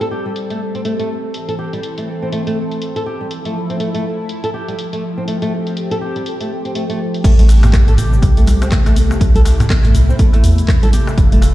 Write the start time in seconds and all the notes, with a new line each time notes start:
Already playing: G3 C4 A4
0.01 A4, closed hi-hat
0.11 G4
0.26 G3
0.36 closed hi-hat
0.50 A3, closed hi-hat
0.75 C4, closed hi-hat
0.85 A3, closed hi-hat
0.99 A3, closed hi-hat
1.34 E3 C4, closed hi-hat
1.49 A4, closed hi-hat
1.59 G4
1.73 G3, closed hi-hat
1.83 closed hi-hat
1.98 A3, closed hi-hat
2.22 C4
2.32 A3, closed hi-hat
2.47 A3, closed hi-hat
2.71 closed hi-hat
2.82 closed hi-hat
2.96 A4, closed hi-hat
3.06 G4
3.21 G3
3.31 F3 E4, closed hi-hat
3.45 A3, closed hi-hat
3.70 C4, closed hi-hat
3.80 A3, closed hi-hat
3.94 A3, closed hi-hat
4.29 closed hi-hat
4.44 A4, closed hi-hat
4.54 G4
4.68 G3, closed hi-hat
4.79 closed hi-hat
4.93 A3, closed hi-hat
5.18 C4
5.28 A3 C4 G4, closed hi-hat
5.42 A3, closed hi-hat
5.67 closed hi-hat
5.77 closed hi-hat
5.91 A4, closed hi-hat
6.01 G4
6.16 G3, closed hi-hat
6.26 closed hi-hat
6.40 A3, closed hi-hat
6.65 C4, closed hi-hat
6.75 A3, closed hi-hat
6.89 A3, closed hi-hat
7.14 closed hi-hat
7.24 A1 C3 A3 G4, kick, closed hi-hat, crash, shaker
7.39 A3, closed hi-hat, muted conga, low conga, shaker
7.49 open hi-hat, darbuka tek, shaker
7.63 closed hi-hat, muted conga, darbuka tek, high conga, darbuka dum, shaker
7.73 kick, cross-stick, clap, closed hi-hat, darbuka ka, high conga, shaker
7.88 A4, closed hi-hat, darbuka dum, shaker
7.97 A1 G4, open hi-hat, muted conga, darbuka tek, shaker
8.12 G3, shaker
8.22 C2, kick, closed hi-hat, muted conga, darbuka tek, shaker
8.37 A3, closed hi-hat, shaker
8.46 open hi-hat, darbuka ka, muted conga, high conga, low conga, shaker
8.62 C4, closed hi-hat, darbuka tek, shaker
8.72 A3, kick, cross-stick, clap, closed hi-hat, muted conga, high conga, shaker
8.86 A3, closed hi-hat, darbuka ka, shaker
8.96 open hi-hat, high conga, shaker
9.11 darbuka ka, muted conga, shaker
9.21 C2 E4, kick, closed hi-hat, shaker
9.35 A4, closed hi-hat, muted conga, low conga, shaker
9.45 G4, open hi-hat, darbuka tek, shaker
9.60 G3, closed hi-hat, muted conga, high conga, darbuka tek, darbuka dum, shaker
9.70 kick, cross-stick, clap, closed hi-hat, darbuka ka, high conga, shaker
9.84 A3, closed hi-hat, darbuka dum, shaker
9.94 C2, open hi-hat, muted conga, shaker
10.09 C4, shaker
10.18 A3, kick, closed hi-hat, muted conga, high conga, shaker
10.33 A3, closed hi-hat, darbuka ka, shaker
10.43 E2, open hi-hat, muted conga, high conga, shaker
10.58 closed hi-hat, shaker
10.68 kick, cross-stick, clap, open hi-hat, shaker
10.83 A4, closed hi-hat, low conga, shaker
10.93 G4, open hi-hat, high conga, shaker
11.07 G3, darbuka ka, muted conga, shaker
11.18 F1 A3 E4 F4, kick, closed hi-hat, shaker
11.32 A3, closed hi-hat, muted conga, low conga, shaker
11.42 open hi-hat, darbuka tek, shaker